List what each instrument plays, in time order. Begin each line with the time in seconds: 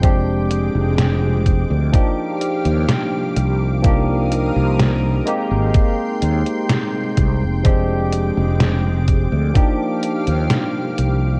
Already playing: fretless electric bass F1, analog synth pad G5
0.01 tine electric piano F3 G#3 C4 D4 G4, analog synth pad G#3 D6, kick, closed hi-hat
0.51 closed hi-hat
0.75 fretless electric bass F1
0.98 snare, closed hi-hat
1.46 kick, closed hi-hat
1.70 fretless electric bass D2
1.92 tine electric piano F3 A#3 D4 D#4 G4, analog synth pad G4 F5, kick, closed hi-hat
2.41 closed hi-hat
2.65 fretless electric bass D#2, closed hi-hat
2.89 snare, closed hi-hat
3.36 fretless electric bass C2, closed hi-hat
3.82 tine electric piano F3 A#3 D4 D#4 G4, analog synth pad A#4 F5 D#6, kick, closed hi-hat
4.32 closed hi-hat
4.56 fretless electric bass C2
4.79 snare, closed hi-hat
5.25 tine electric piano G#3 A#3 C4 D#4 G4, analog synth pad G5 C6, closed hi-hat
5.51 fretless electric bass G#1
5.74 kick, closed hi-hat
6.22 fretless electric bass D#2, closed hi-hat
6.46 closed hi-hat
6.69 snare, closed hi-hat
7.17 fretless electric bass C2, kick, closed hi-hat
7.42 fretless electric bass F1
7.63 tine electric piano F3 G#3 C4 D4 G4, analog synth pad G#3 D6, kick, closed hi-hat
8.13 closed hi-hat
8.37 fretless electric bass F1
8.60 snare, closed hi-hat
9.08 kick, closed hi-hat
9.32 fretless electric bass D2
9.54 tine electric piano F3 A#3 D4 D#4 G4, analog synth pad G4 F5, kick, closed hi-hat
10.03 closed hi-hat
10.27 fretless electric bass D#2, closed hi-hat
10.50 snare, closed hi-hat
10.98 fretless electric bass C2, closed hi-hat